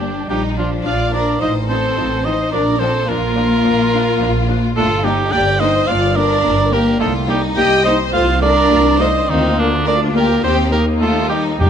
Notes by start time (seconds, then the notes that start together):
Already playing: G1 G3 D4 G4
0.00 A#3 D4
0.29 A#1 F3 G3 D4 D#4 G4
0.56 F3 D4 F4
0.85 A#1 F3 D4 F4 D5 F5
1.12 F3 D4 A#4 D5
1.40 A1 F3 D#4 C5 D#5
1.68 F3 C4 D#4 A4 C5
1.97 A1 F3 D#4
2.24 F3 D#4 C5 D#5
2.51 A#1 F3 D4 A#4 D5
2.79 F3 C4 D4 A4 C5
3.07 A#1 F3 A#3 D4 F4 A#4
3.36 F3 D4
3.65 A#1 F3 D4
3.93 F3 D4
4.20 A#1 F3 D4
4.48 F3 D4
4.76 G1 A3 A#3 D4 F4 A4
5.03 G3 A#3 D4 D#4 G4
5.32 G1 A#3 D4 G4 D5 G5
5.60 A#3 D4 D#4 C5 D#5
5.87 G1 A#3 D4 F4 D5 F5
6.16 A#3 D4 A#4 D5
6.43 G1 A#3 D4
6.70 A#3 D4 G4 A#4
6.98 C2 A3 A#3 D#4 F4 A4
7.27 G3 A#3 D#4 G4
7.56 C2 A#3 D#4 G4 D#5 G5
7.85 A#3 D#4 C5 D#5
8.13 C2 A3 F4 C5 F5
8.41 A3 D4 F4 A#4 D5
8.70 C2 A3 F4
8.98 A3 D#4 F4 C5 D#5
9.28 D2 D#3 A#3 C4 D#4 F4
9.57 D3 A#3 D4
9.84 A#3 D4 F4 A#4 D5
10.14 A#3 G4 A#4
10.42 D#2 A#3 C4 D#4 G4 C5
10.71 A#3 G4 A#4
11.00 A3 F4 A4
11.29 G3 D#4 G4
11.33 D#4
11.59 F2 G3 A#3 D4 D#4 G4